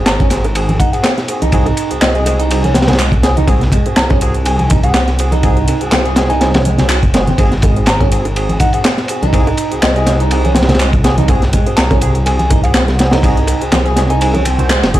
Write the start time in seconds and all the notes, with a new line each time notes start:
Already playing: G#1 C4 F#4 G#4
0.06 A#5, snare, clap, closed hi-hat, ride
0.20 C#4, kick, closed hi-hat, high bongo
0.30 C4 F#4 G#4, snare, closed hi-hat, ride
0.44 closed hi-hat, high bongo
0.55 C4 F#4 G#4, closed hi-hat, ride
0.69 closed hi-hat, high conga
0.79 D#4 F#5, kick, closed hi-hat, ride, high bongo, high conga
0.93 C4 F#4 G#4 F#5, closed hi-hat, ride
1.03 C4, snare, clap, closed hi-hat, ride, high bongo
1.18 snare, closed hi-hat
1.28 C4 F#4 G#4, closed hi-hat, ride
1.42 C2 D#4, closed hi-hat, high bongo, high conga
1.52 C4 F#4 G#4, kick, closed hi-hat, ride
1.66 closed hi-hat, high bongo
1.77 closed hi-hat, ride
1.91 C2 C4 F#4 G#4, closed hi-hat
2.01 C2 C4 D#5, snare, clap, closed hi-hat, ride, high bongo
2.15 G#4 D#5, closed hi-hat
2.26 G#3 C4 F#4 G#4, closed hi-hat, ride, high bongo
2.39 D#4, closed hi-hat
2.50 C4 F#4 G#4, closed hi-hat, ride
2.64 C#4, closed hi-hat, high bongo, high conga
2.74 C4, snare, closed hi-hat, ride, high conga
2.82 snare, ride
2.88 C4 F#4 G#4, snare, closed hi-hat, ride, high bongo, low conga
2.93 snare, ride
2.99 G#3, clap, closed hi-hat, ride
3.12 kick, closed hi-hat
3.23 C4 F#4 G#4, snare, closed hi-hat, ride, high bongo
3.37 D#4, closed hi-hat, high conga, low conga
3.48 G#3 C4 F#4 G#4, kick, closed hi-hat, ride, high bongo
3.61 snare, closed hi-hat
3.72 G#3, kick, closed hi-hat, ride
3.86 C4 F#4 G#4, closed hi-hat, high bongo
3.97 C2 A#5, snare, clap, closed hi-hat, ride
4.10 C#4, kick, closed hi-hat, high bongo
4.21 C4 F#4 G#4, closed hi-hat, ride
4.34 closed hi-hat
4.45 C4 F#4 G#4 G#5, closed hi-hat, ride, high bongo
4.59 G#5, closed hi-hat, high conga
4.70 D#4, kick, closed hi-hat, ride, high bongo, high conga
4.83 C4 F#4 G#4 F#5, closed hi-hat, ride
4.94 C4, snare, clap, closed hi-hat, ride
5.08 snare, closed hi-hat, high bongo
5.19 C4 F#4 G#4, closed hi-hat, ride
5.32 D#4, closed hi-hat, high bongo, high conga
5.43 C4 F#4 G#4, kick, closed hi-hat, ride
5.57 closed hi-hat
5.68 closed hi-hat, ride, high bongo
5.81 C2 C4 F#4 G#4, closed hi-hat
5.92 C2 C4, snare, clap, closed hi-hat, ride, high bongo
6.05 G#4, closed hi-hat
6.16 G#3 C4 F#4 G#4, snare, closed hi-hat, ride
6.30 D#4 G#5, closed hi-hat, high bongo
6.40 C4 F#4 G#4 G#5, snare, closed hi-hat, ride
6.54 C#4, snare, closed hi-hat, ride, high bongo, high conga
6.65 G#3, closed hi-hat, high conga
6.78 F#3 C4 F#4 G#4, snare, closed hi-hat, ride, low conga
6.89 F#3, clap, closed hi-hat, ride, high bongo
7.03 F#1, kick, closed hi-hat
7.14 G#3 C4 F#4 G#4, snare, closed hi-hat, ride, high bongo
7.27 C4, closed hi-hat, high conga, low conga
7.38 G#1 G#3 C4 F#4 G#4, kick, closed hi-hat, ride, high bongo
7.52 snare, closed hi-hat
7.62 G#3, kick, closed hi-hat, ride, high bongo
7.76 C4 F#4 G#4, closed hi-hat
7.86 A#5, snare, clap, closed hi-hat, ride
8.00 C#4, kick, closed hi-hat, high bongo
8.12 C4 F#4 G#4, closed hi-hat, ride
8.25 closed hi-hat, high bongo
8.36 C4 F#4 G#4, closed hi-hat, ride
8.49 closed hi-hat, high conga
8.60 D#4 F#5, kick, closed hi-hat, ride, high bongo, high conga
8.73 C4 F#4 G#4 F#5, closed hi-hat, ride
8.84 C4, snare, clap, closed hi-hat, ride, high bongo
8.98 snare, closed hi-hat
9.08 C4 F#4 G#4, closed hi-hat, ride
9.22 C2 D#4, closed hi-hat, high bongo, high conga
9.33 C4 F#4 G#4, kick, closed hi-hat, ride
9.47 closed hi-hat, high bongo
9.57 closed hi-hat, ride
9.71 C2 C4 F#4 G#4, closed hi-hat
9.82 C2 C4 D#5, snare, clap, closed hi-hat, ride, high bongo
9.95 G#4 D#5, closed hi-hat
10.06 G#3 C4 F#4 G#4, snare, closed hi-hat, ride, high bongo
10.20 D#4, closed hi-hat
10.31 C4 F#4 G#4, closed hi-hat, ride
10.45 C#4, closed hi-hat, high bongo, high conga
10.55 C4, snare, closed hi-hat, ride, high conga
10.62 snare, ride
10.69 C4 F#4 G#4, snare, closed hi-hat, ride, high bongo, low conga
10.75 snare, ride
10.79 G#3, clap, closed hi-hat, ride
10.93 kick, closed hi-hat
11.03 C4 F#4 G#4, snare, closed hi-hat, ride, high bongo
11.18 D#4, closed hi-hat, high conga, low conga
11.28 G#3 C4 F#4 G#4, kick, closed hi-hat, ride, high bongo
11.42 snare, closed hi-hat
11.53 G#3, kick, closed hi-hat, ride
11.66 C4 F#4 G#4, closed hi-hat, high bongo
11.77 C2 A#5, snare, clap, closed hi-hat, ride
11.91 C#4, kick, closed hi-hat, high bongo
12.01 C4 F#4 G#4, closed hi-hat, ride
12.15 closed hi-hat
12.26 C4 F#4 G#4 G#5, closed hi-hat, ride, high bongo
12.39 G#5, closed hi-hat, high conga
12.50 D#4, kick, closed hi-hat, ride, high bongo, high conga
12.63 C4 F#4 G#4 F#5, closed hi-hat, ride
12.74 C4, snare, clap, closed hi-hat, ride
12.88 snare, closed hi-hat, high bongo
12.99 C4 F#4 G#4, snare, closed hi-hat, ride
13.11 D#4, snare, closed hi-hat, ride, high bongo, high conga
13.23 C4 F#4 G#4, kick, closed hi-hat, ride
13.37 closed hi-hat
13.47 closed hi-hat, ride, high bongo
13.61 C2 C4 F#4 G#4, closed hi-hat
13.72 C2 C4, snare, clap, closed hi-hat, ride, high bongo, high conga
13.86 G#4, closed hi-hat
13.96 G#3 C4 F#4 G#4, snare, closed hi-hat, ride
14.10 D#4 G#5, closed hi-hat, high bongo
14.21 C4 F#4 G#4 G#5, closed hi-hat, ride
14.34 C#4, closed hi-hat, high bongo, high conga
14.45 C4, closed hi-hat, ride, high conga
14.58 C4 F#4 C5, closed hi-hat, low conga
14.69 G#3 C4 F#4 C5, snare, clap, closed hi-hat, ride, high bongo
14.83 F#1, snare, closed hi-hat, ride
14.94 C4 F#4 G#4, kick, closed hi-hat, high bongo